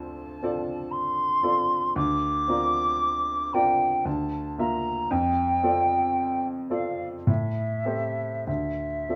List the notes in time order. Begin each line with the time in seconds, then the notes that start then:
Already playing: D2 C4 F4 A4 D5 A5
0.43 C4 F4 A4 D5
0.91 C6
1.43 C4 F4 A4 D5
1.96 D2 D6
2.48 C4 F4 A#4 D5
3.53 C4 F4 A#4 D5 G5
4.05 D2 A5
4.58 A#3 F4 A#4 E5 A#5
5.11 F2 G5
5.63 C4 F4 A4 D5
6.70 C4 F4 A4 D5 F5
7.27 A2 E5
7.85 C4 G4 A4 C5
8.47 D2 E5
9.09 C4 F4 A4 D5